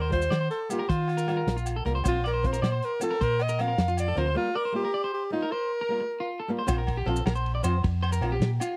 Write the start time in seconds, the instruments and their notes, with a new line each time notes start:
Already playing: fingered electric bass D#2, alto saxophone A#4
0.01 clean electric guitar C5
0.10 nylon-string guitar G3 F4, alto saxophone C5, kick, closed hi-hat
0.22 maracas
0.30 fingered electric bass D#3, clean electric guitar D5, snare, closed hi-hat, low agogo
0.41 clean electric guitar C5
0.51 alto saxophone A4, closed hi-hat
0.69 nylon-string guitar G3 A#3 F4, alto saxophone G4, closed hi-hat, low agogo, maracas
0.79 clean electric guitar A#4
0.89 fingered electric bass D#3, alto saxophone F4, clean electric guitar C5, kick, closed hi-hat
1.08 closed hi-hat, low agogo
1.17 clean electric guitar A#4, maracas
1.27 nylon-string guitar G3 F4, muted nylon-string guitar stroke, snare, closed hi-hat, low agogo
1.37 clean electric guitar A#4
1.47 fingered electric bass A#1, snare, closed hi-hat
1.57 clean electric guitar F4, maracas
1.66 closed hi-hat, low agogo, maracas
1.76 clean electric guitar A4
1.85 fingered electric bass C2, nylon-string guitar G3 A#3 F4, clean electric guitar A#4, closed hi-hat
1.95 clean electric guitar C5
2.04 fingered electric bass A#1, nylon-string guitar F3 C4 F4, clean electric guitar C5, kick, closed hi-hat, low agogo, maracas
2.08 alto saxophone F4
2.24 alto saxophone A#4, clean electric guitar D5, closed hi-hat, low agogo
2.33 clean electric guitar C5
2.43 nylon-string guitar F3 C4 F4, alto saxophone C5, kick, closed hi-hat
2.53 clean electric guitar A#4, maracas
2.62 fingered electric bass A#2, clean electric guitar D5, snare, closed hi-hat, low agogo
2.72 clean electric guitar C5
2.82 alto saxophone A#4, closed hi-hat
3.00 nylon-string guitar F3 C4 F4, alto saxophone A4, closed hi-hat, low agogo, maracas
3.11 clean electric guitar A#4
3.21 fingered electric bass A#2, alto saxophone A#4, clean electric guitar C5, kick, closed hi-hat
3.39 alto saxophone D#5, closed hi-hat, low agogo
3.49 clean electric guitar A#4, maracas
3.59 nylon-string guitar F3 C4 F4, alto saxophone F5, snare, closed hi-hat, low agogo
3.68 clean electric guitar A#4
3.78 fingered electric bass F2, snare, closed hi-hat
3.88 clean electric guitar F4, maracas
3.97 alto saxophone D5, closed hi-hat, low agogo, maracas
4.08 clean electric guitar A4
4.15 fingered electric bass D2, nylon-string guitar F3 C4 F4, clean electric guitar A#4, alto saxophone C5, closed hi-hat
4.27 clean electric guitar C5
4.34 nylon-string guitar G3 A#3 F4, alto saxophone F4, muted clean electric guitar stroke
4.55 alto saxophone A#4, clean electric guitar D5
4.65 clean electric guitar C5
4.72 nylon-string guitar G3 A#3 F4, alto saxophone G4
4.85 clean electric guitar A#4
4.94 clean electric guitar D5
5.04 clean electric guitar C5
5.14 alto saxophone G4
5.30 nylon-string guitar G3 A#3 F4, alto saxophone D#4
5.42 clean electric guitar A#4
5.52 alto saxophone A#4, clean electric guitar C5
5.81 clean electric guitar A#4
5.89 nylon-string guitar G3 A#3 F4
6.01 muted clean electric guitar stroke
6.20 clean electric guitar F4
6.40 clean electric guitar A4
6.48 nylon-string guitar G3 A#3 F4
6.59 clean electric guitar C5
6.67 fingered electric bass A#1, nylon-string guitar F3 C4 F4, clean electric guitar C5, kick, ride, low agogo, maracas
6.78 clean electric guitar A#4
6.87 kick, ride, low agogo
6.97 clean electric guitar G4
7.06 fingered electric bass A#1, nylon-string guitar F3 C4 F4, clean electric guitar A4, ride
7.16 maracas
7.25 fingered electric bass A#1, clean electric guitar A#4, snare, ride, low agogo
7.35 clean electric guitar C5, maracas
7.46 ride
7.55 clean electric guitar D5
7.63 fingered electric bass F2, nylon-string guitar F3 C4 F4, clean electric guitar C5, ride, low agogo, maracas
7.84 fingered electric bass F2, muted clean electric guitar stroke, kick, ride
8.03 clean electric guitar C5, ride, low agogo
8.12 clean electric guitar A#4, maracas
8.21 fingered electric bass A#1, nylon-string guitar F3 C4 F4, ride, low agogo
8.32 clean electric guitar G4
8.40 fingered electric bass A#2, snare, ride, maracas
8.60 clean electric guitar F4, ride, low agogo, maracas